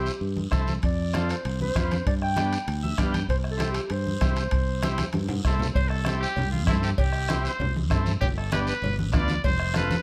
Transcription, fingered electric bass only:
0.21 0.46 G2 medium
0.52 0.77 C2 medium
0.83 1.32 F2 medium
1.45 1.70 C2 medium
1.75 2.00 F2 medium
2.06 2.56 G2 medium
2.68 2.92 D2 medium
2.98 3.23 G2 medium
3.28 3.78 C2 medium
3.90 4.15 G2 medium
4.21 4.46 C2 medium
4.52 5.02 C2 medium
5.14 5.39 G2 medium
5.45 5.69 C2 medium
5.75 6.25 C2 medium
6.37 6.67 C2 loud
6.67 6.92 G2 medium
6.98 7.47 C2 medium
7.60 7.91 C2 loud
7.91 8.16 G2 medium
8.22 8.71 G1 medium
8.82 9.14 G1 medium
9.14 9.39 D2 medium
9.44 9.94 F1 medium

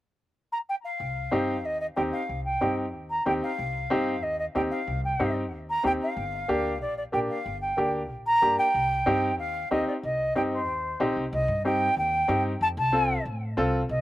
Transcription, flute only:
0.52 0.58 A#5 medium
0.69 0.75 G5 medium
0.84 1.67 F5 medium
1.65 1.80 D#5 medium
1.80 1.86 D#5 medium
1.96 2.02 G5 medium
2.13 2.43 F5 medium
2.45 2.75 G5 medium
3.10 3.25 A#5 medium
3.27 3.33 G5 medium
3.43 4.24 F5 medium
4.23 4.38 D#5 medium
4.39 4.45 D#5 medium
4.55 4.61 G5 medium
4.71 5.01 F5 medium
5.05 5.34 G5 medium
5.70 5.84 A#5 medium
5.86 5.92 G5 medium
6.02 6.78 F5 medium
6.81 6.96 D5 medium
6.97 7.03 D5 medium
7.13 7.19 G5 medium
7.30 7.60 F5 medium
7.61 7.92 G5 medium
8.26 8.56 A#5 loud
8.59 9.35 G5 medium
9.39 9.69 F5 medium
9.71 9.86 D#5 medium
9.88 9.94 D5 medium
10.04 10.34 D#5 medium
10.36 10.42 G5 medium
10.52 11.13 C5 medium
11.33 11.63 D#5 medium
11.65 11.95 G5 medium
11.98 12.42 G5 medium
12.62 12.68 A5 loud
12.78 13.23 A5 loud
13.90 14.01 D#5 medium

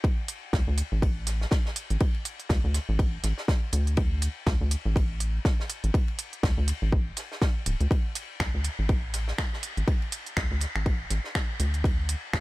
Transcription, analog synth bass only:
0.53 0.63 D2 loud
0.68 0.82 D2 medium
0.92 1.46 A1 medium
1.91 1.97 A1 medium
2.50 2.59 D2 loud
2.64 2.79 D2 medium
2.89 3.18 A1 medium
3.24 3.33 A1 medium
3.73 4.29 D2 medium
4.47 4.56 D2 loud
4.61 4.76 D2 medium
4.86 5.39 A1 loud
5.84 5.91 A1 medium
6.43 6.53 D2 loud
6.58 6.73 D2 medium
6.82 7.12 A1 medium
7.66 7.76 D1 medium
7.81 7.87 D2 medium
8.40 8.49 D2 loud
8.54 8.69 D2 medium
8.79 9.33 A1 medium
9.77 9.84 A1 medium
10.37 10.46 D2 loud
10.51 10.66 D2 medium
10.76 11.05 A1 medium
11.11 11.20 A1 medium
11.60 12.15 D2 loud
12.33 12.40 D2 loud

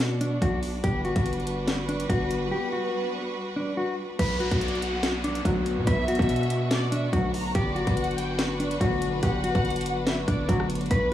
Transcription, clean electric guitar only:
0.00 0.17 F#4 medium
0.21 0.38 D4 medium
0.42 0.59 F#4 medium
0.84 1.01 G4 medium
1.05 1.85 F#4 medium
1.89 2.06 D4 medium
2.09 2.49 F#4 medium
2.51 2.69 G4 medium
2.73 3.52 F#4 medium
3.56 3.74 D4 medium
3.77 3.95 F#4 medium
4.19 4.36 B4 loud
4.40 5.20 F#4 medium
5.24 5.41 D4 medium
5.45 5.85 F#4 medium
5.87 6.04 B4 medium
6.08 6.88 F#4 medium
6.92 7.09 D4 medium
7.13 7.30 F#4 medium
7.55 7.72 G4 loud
7.76 8.56 F#4 medium
8.60 8.77 D4 medium
8.81 9.20 F#4 medium
9.23 9.40 G4 medium
9.44 10.24 F#4 medium
10.28 10.45 D4 medium
10.49 10.66 F#4 medium
10.91 11.08 B4 loud

